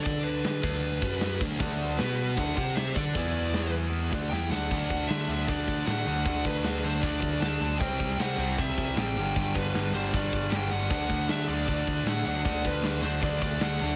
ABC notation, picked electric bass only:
X:1
M:4/4
L:1/8
Q:1/4=155
K:D
V:1 name="Picked electric bass" clef=bass
D,3 D,,2 F,,2 D,, | D,,2 B,,2 D,, =C,2 D, | E,,4- E,, D,, E,, D,, | [K:Dmix] D,, D,, D, D,, D,, D,, A,, D,, |
D,, D,, D,, D,, D,, D,, D,, D,, | C,, C,, C, C,, C,, C,, A,,, G,,, | G,,, G,,, G,,, G,,, G,,, G,,, G,,, G,,, | D,, D,, D, D,, D,, D,, A,, D,, |
D,, D,, D,, D,, D,, D,, D,, D,, |]